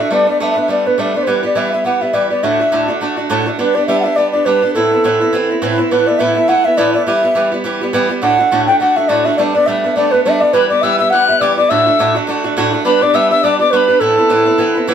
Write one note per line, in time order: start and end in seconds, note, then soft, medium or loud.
0.00 0.10 D3 soft
0.00 0.10 A3 soft
0.00 0.11 D4 soft
0.00 0.11 F#4 soft
0.00 0.12 E5 medium
0.11 0.27 G3 medium
0.11 0.27 A3 medium
0.11 0.27 B3 medium
0.11 0.25 D4 medium
0.11 0.27 D5 medium
0.27 0.39 A3 soft
0.27 0.40 B3 soft
0.27 0.39 D4 soft
0.27 0.40 D5 medium
0.40 0.56 G3 medium
0.40 0.56 A3 medium
0.40 0.56 B3 medium
0.40 0.55 D4 medium
0.40 0.50 E5 medium
0.50 0.59 E5 medium
0.56 0.68 A3 soft
0.56 0.69 B3 soft
0.56 0.69 D4 soft
0.61 0.69 E5 medium
0.68 0.85 G3 soft
0.68 0.85 A3 medium
0.68 0.85 B3 medium
0.68 0.84 D4 medium
0.68 0.88 D5 medium
0.86 0.97 A3 soft
0.86 0.98 B3 soft
0.86 0.98 D4 soft
0.86 1.01 B4 medium
0.98 1.14 G3 medium
0.98 1.14 A3 medium
0.98 1.15 B3 medium
0.98 1.13 D4 medium
0.98 1.15 E5 medium
1.14 1.27 A3 soft
1.14 1.26 B3 soft
1.14 1.27 D4 soft
1.14 1.25 D5 medium
1.23 1.43 E3 medium
1.23 1.43 G3 medium
1.23 1.29 C5 medium
1.27 1.43 B3 medium
1.27 1.42 G4 medium
1.27 1.44 B4 medium
1.43 1.55 G3 soft
1.43 1.55 B3 soft
1.43 1.55 G4 soft
1.43 1.59 D5 medium
1.55 1.72 E3 medium
1.55 1.72 G3 medium
1.55 1.72 B3 medium
1.55 1.71 G4 medium
1.55 1.72 E5 medium
1.72 1.84 G3 soft
1.72 1.85 B3 soft
1.72 1.85 G4 soft
1.72 1.84 E5 medium
1.84 2.01 E3 soft
1.84 2.01 G3 soft
1.84 2.01 B3 medium
1.84 2.00 G4 medium
1.84 2.03 F#5 medium
2.01 2.13 G3 soft
2.01 2.13 B3 soft
2.01 2.14 G4 soft
2.01 2.15 E5 medium
2.13 2.30 E3 medium
2.13 2.30 G3 medium
2.13 2.30 B3 medium
2.13 2.29 G4 medium
2.13 2.30 D5 medium
2.30 2.43 G3 soft
2.30 2.43 B3 soft
2.30 2.43 G4 soft
2.30 2.45 D5 medium
2.43 2.59 D2 medium
2.43 2.59 A2 medium
2.43 2.59 D3 medium
2.43 2.59 A3 medium
2.43 2.59 D4 medium
2.43 2.58 F#4 medium
2.43 2.88 E5 medium
2.59 2.71 D3 soft
2.59 2.71 A3 soft
2.59 2.72 D4 soft
2.59 2.72 F#4 soft
2.72 2.88 D2 medium
2.72 2.88 A2 medium
2.72 2.88 D3 medium
2.72 2.88 A3 medium
2.72 2.88 D4 medium
2.72 2.86 F#4 medium
2.88 3.00 D3 soft
2.88 3.00 A3 soft
2.88 3.01 D4 soft
2.88 3.00 F#4 soft
3.01 3.17 D3 medium
3.01 3.17 A3 medium
3.01 3.16 D4 medium
3.01 3.15 F#4 medium
3.17 3.29 D3 soft
3.17 3.29 A3 soft
3.17 3.29 D4 soft
3.17 3.29 F#4 soft
3.29 3.46 D2 medium
3.29 3.46 A2 medium
3.29 3.46 D3 medium
3.29 3.46 A3 medium
3.29 3.45 D4 medium
3.29 3.45 F#4 medium
3.46 3.58 D3 soft
3.46 3.59 A3 soft
3.46 3.59 D4 soft
3.46 3.59 F#4 soft
3.59 3.75 G3 medium
3.59 3.75 B3 medium
3.59 3.76 D4 medium
3.59 3.74 G4 medium
3.59 3.76 B4 medium
3.75 3.87 B3 soft
3.75 3.88 D4 soft
3.75 3.88 G4 soft
3.75 3.86 D5 medium
3.87 4.04 G3 medium
3.87 4.04 B3 medium
3.87 4.04 D4 medium
3.87 4.03 G4 medium
3.87 3.99 E5 loud
4.00 4.17 E5 medium
4.00 4.05 F#5 medium
4.04 4.16 B3 soft
4.04 4.17 D4 soft
4.04 4.17 G4 soft
4.16 4.33 G3 medium
4.16 4.33 B3 medium
4.16 4.33 D4 medium
4.16 4.32 G4 medium
4.16 4.31 D5 medium
4.31 4.46 D4 soft
4.31 4.46 G4 soft
4.31 4.47 D5 medium
4.36 4.45 B3 soft
4.46 4.62 G3 medium
4.46 4.62 B3 medium
4.46 4.62 D4 medium
4.46 4.61 G4 medium
4.46 4.74 B4 medium
4.62 4.74 B3 soft
4.62 4.75 D4 soft
4.62 4.75 G4 soft
4.74 4.91 A2 medium
4.74 4.91 E3 medium
4.74 4.91 B3 medium
4.74 4.91 C4 medium
4.74 4.90 E4 medium
4.74 5.57 A4 medium
4.91 5.04 B3 soft
4.91 5.04 C4 soft
4.91 5.04 E4 soft
5.04 5.20 A2 medium
5.04 5.20 E3 medium
5.04 5.21 B3 medium
5.04 5.20 C4 medium
5.04 5.19 E4 medium
5.20 5.33 B3 soft
5.20 5.33 C4 soft
5.20 5.33 E4 soft
5.33 5.49 E3 medium
5.33 5.50 B3 medium
5.33 5.49 C4 medium
5.33 5.48 E4 medium
5.49 5.61 B3 soft
5.49 5.62 C4 soft
5.49 5.62 E4 soft
5.62 5.78 A2 medium
5.62 5.78 E3 medium
5.62 5.78 B3 medium
5.62 5.78 C4 medium
5.62 5.77 E4 medium
5.78 5.91 B3 soft
5.78 5.91 C4 soft
5.78 5.91 E4 medium
5.90 6.07 A2 medium
5.90 6.07 E3 medium
5.90 6.07 A3 medium
5.90 6.08 B3 medium
5.90 6.06 E4 medium
5.90 6.08 B4 medium
6.07 6.19 A3 soft
6.07 6.19 B3 soft
6.07 6.20 E4 medium
6.07 6.20 D5 medium
6.18 6.36 A2 medium
6.18 6.36 E3 medium
6.18 6.35 A3 medium
6.18 6.36 B3 medium
6.18 6.34 E4 medium
6.18 6.35 E5 medium
6.35 6.48 A3 soft
6.35 6.48 B3 soft
6.35 6.48 E4 medium
6.35 6.50 E5 medium
6.48 6.65 E3 medium
6.48 6.64 A3 medium
6.48 6.65 B3 medium
6.48 6.63 E4 medium
6.48 6.66 F#5 loud
6.64 6.77 A3 soft
6.64 6.77 B3 soft
6.64 6.77 E4 soft
6.64 6.79 E5 medium
6.77 6.94 A2 medium
6.77 6.94 E3 medium
6.77 6.94 A3 medium
6.77 6.94 B3 medium
6.77 6.92 E4 medium
6.77 6.93 D5 medium
6.94 7.07 A3 soft
6.94 7.07 B3 soft
6.94 7.06 E4 soft
6.94 7.06 D5 medium
7.06 7.23 E3 medium
7.06 7.23 G3 medium
7.06 7.23 B3 medium
7.06 7.21 G4 medium
7.06 7.48 E5 medium
7.23 7.34 G3 soft
7.23 7.35 B3 soft
7.23 7.35 G4 soft
7.35 7.52 E3 medium
7.35 7.52 G3 medium
7.35 7.51 B3 medium
7.35 7.50 G4 medium
7.52 7.64 G3 soft
7.52 7.64 B3 soft
7.52 7.64 G4 soft
7.64 7.81 E3 medium
7.64 7.81 G3 medium
7.64 7.81 B3 medium
7.64 7.80 G4 medium
7.81 7.93 G3 soft
7.81 7.93 B3 soft
7.81 7.94 G4 medium
7.93 8.10 E3 medium
7.93 8.10 G3 medium
7.93 8.09 B3 medium
7.93 8.08 G4 medium
8.09 8.22 G3 soft
8.09 8.22 B3 soft
8.09 8.22 G4 medium
8.22 8.38 D2 medium
8.22 8.39 A2 medium
8.22 8.39 D3 medium
8.22 8.39 A3 medium
8.22 8.38 D4 medium
8.22 8.37 F#4 medium
8.22 8.65 F#5 medium
8.38 8.51 D3 soft
8.38 8.51 A3 soft
8.38 8.51 D4 soft
8.38 8.51 F#4 soft
8.51 8.68 D2 medium
8.51 8.68 A2 medium
8.51 8.68 D3 medium
8.51 8.68 A3 medium
8.51 8.67 D4 medium
8.51 8.66 F#4 medium
8.67 8.79 D3 soft
8.67 8.80 A3 soft
8.67 8.80 D4 soft
8.67 8.80 F#4 soft
8.67 8.79 G5 medium
8.80 8.96 D3 medium
8.80 8.97 A3 medium
8.80 8.96 D4 medium
8.80 8.95 F#4 medium
8.80 8.98 F#5 medium
8.96 9.08 D3 soft
8.96 9.08 A3 soft
8.96 9.09 D4 soft
8.96 9.09 F#4 soft
8.96 9.10 E5 medium
9.08 9.25 D2 medium
9.08 9.25 A2 medium
9.08 9.26 D3 medium
9.08 9.25 A3 medium
9.08 9.25 D4 medium
9.08 9.24 F#4 medium
9.08 9.26 D5 medium
9.25 9.38 D3 soft
9.25 9.38 A3 soft
9.25 9.38 D4 soft
9.25 9.38 F#4 medium
9.25 9.36 E5 medium
9.37 9.54 G3 medium
9.37 9.55 A3 medium
9.37 9.54 B3 medium
9.37 9.54 D4 medium
9.37 9.43 D5 medium
9.54 9.67 A3 soft
9.54 9.67 B3 soft
9.54 9.67 D4 medium
9.54 9.68 D5 medium
9.66 9.84 G3 medium
9.66 9.84 A3 medium
9.66 9.84 B3 medium
9.66 9.83 D4 medium
9.66 9.95 E5 medium
9.84 9.96 A3 soft
9.84 9.96 B3 soft
9.84 9.96 D4 soft
9.96 10.12 G3 soft
9.96 10.13 A3 medium
9.96 10.12 B3 medium
9.96 10.11 D4 medium
9.96 10.13 D5 medium
10.12 10.25 A3 soft
10.12 10.25 B3 soft
10.12 10.25 D4 soft
10.12 10.23 B4 medium
10.24 10.42 G3 medium
10.24 10.42 A3 medium
10.24 10.41 B3 medium
10.24 10.40 D4 medium
10.24 10.42 E5 medium
10.41 10.54 A3 soft
10.41 10.53 B3 soft
10.41 10.54 D4 soft
10.41 10.55 D5 medium
10.53 10.70 E3 medium
10.53 10.70 G3 medium
10.53 10.70 B3 medium
10.53 10.69 G4 medium
10.53 10.68 B4 medium
10.53 10.69 B5 medium
10.69 10.82 G3 soft
10.69 10.83 B3 soft
10.69 10.83 G4 soft
10.69 10.83 D5 medium
10.69 10.85 D6 medium
10.82 10.99 E3 medium
10.82 11.00 G3 medium
10.82 10.99 B3 medium
10.82 10.98 G4 medium
10.82 10.97 E5 medium
10.82 10.99 E6 medium
10.98 11.12 G3 soft
10.98 11.12 B3 soft
10.98 11.12 G4 medium
10.98 11.12 E5 medium
10.98 11.11 E6 medium
11.10 11.28 E3 medium
11.10 11.29 G3 medium
11.10 11.28 B3 medium
11.10 11.27 F#5 medium
11.10 11.43 F#6 medium
11.14 11.27 G4 medium
11.28 11.41 G3 soft
11.28 11.41 B3 soft
11.28 11.41 G4 soft
11.28 11.39 E5 medium
11.40 11.57 E3 medium
11.40 11.58 G3 medium
11.40 11.58 B3 medium
11.40 11.56 G4 medium
11.40 11.55 D5 medium
11.40 11.57 D6 medium
11.57 11.70 G3 soft
11.57 11.70 B3 soft
11.57 11.70 G4 soft
11.57 11.71 D5 medium
11.57 11.71 D6 medium
11.69 11.86 D2 medium
11.69 11.86 A2 medium
11.69 11.86 D3 medium
11.69 11.87 A3 medium
11.69 11.86 D4 medium
11.69 11.85 F#4 medium
11.69 12.15 E5 medium
11.69 12.15 E6 medium
11.86 11.99 D3 soft
11.86 11.99 A3 soft
11.86 11.99 D4 soft
11.86 11.99 F#4 soft
11.99 12.15 D2 medium
11.99 12.15 A2 medium
11.99 12.15 D3 medium
11.99 12.15 A3 medium
11.99 12.14 D4 medium
11.99 12.13 F#4 medium
12.15 12.26 D3 soft
12.15 12.27 A3 medium
12.15 12.27 D4 medium
12.15 12.27 F#4 soft
12.27 12.43 D3 medium
12.27 12.44 A3 medium
12.27 12.44 D4 medium
12.27 12.43 F#4 medium
12.44 12.56 D3 soft
12.44 12.56 A3 soft
12.44 12.57 D4 soft
12.44 12.56 F#4 medium
12.57 12.73 D2 medium
12.57 12.73 A2 medium
12.57 12.73 D3 medium
12.57 12.73 A3 medium
12.57 12.72 D4 medium
12.57 12.71 F#4 medium
12.72 12.84 D3 soft
12.72 12.85 A3 soft
12.72 12.85 D4 soft
12.72 12.85 F#4 soft
12.85 13.01 G3 medium
12.85 13.01 B3 medium
12.85 13.01 D4 medium
12.85 13.00 G4 medium
12.85 13.04 B4 medium
12.85 13.03 B5 medium
13.01 13.13 B3 soft
13.01 13.14 D4 soft
13.01 13.14 G4 medium
13.01 13.16 D5 medium
13.01 13.16 D6 medium
13.14 13.30 G3 medium
13.14 13.30 B3 medium
13.14 13.30 D4 medium
13.14 13.29 G4 medium
13.14 13.30 E5 loud
13.14 13.30 E6 medium
13.30 13.43 B3 soft
13.30 13.43 D4 soft
13.30 13.43 G4 soft
13.30 13.42 E5 medium
13.30 13.45 E6 medium
13.43 13.59 G3 medium
13.43 13.60 B3 medium
13.43 13.60 D4 medium
13.43 13.58 G4 medium
13.43 13.58 D5 medium
13.43 13.59 D6 medium
13.59 13.72 B3 soft
13.59 13.72 D4 soft
13.59 13.72 G4 soft
13.59 13.72 D5 medium
13.59 13.74 D6 medium
13.71 13.88 G3 medium
13.71 13.89 B3 medium
13.71 13.88 D4 medium
13.71 13.87 G4 medium
13.71 14.01 B4 medium
13.71 13.77 C#6 medium
13.76 14.03 B5 medium
13.88 14.00 B3 soft
13.88 14.01 D4 soft
13.88 14.00 G4 soft
14.00 14.17 A2 medium
14.00 14.17 E3 medium
14.00 14.17 B3 medium
14.00 14.17 C4 medium
14.00 14.16 E4 medium
14.00 14.87 A4 medium
14.00 14.87 A5 medium
14.17 14.29 B3 soft
14.17 14.29 C4 soft
14.17 14.29 E4 soft
14.29 14.46 A2 medium
14.29 14.46 E3 medium
14.29 14.46 B3 medium
14.29 14.45 C4 medium
14.29 14.44 E4 medium
14.45 14.58 B3 soft
14.45 14.59 C4 soft
14.45 14.58 E4 medium
14.58 14.74 E3 medium
14.58 14.75 B3 medium
14.58 14.75 C4 medium
14.58 14.74 E4 medium
14.75 14.87 B3 soft
14.75 14.88 C4 soft
14.75 14.87 E4 soft
14.87 14.94 A2 medium
14.87 14.94 E3 medium
14.87 14.94 B3 medium
14.87 14.94 C4 medium
14.87 14.94 E4 medium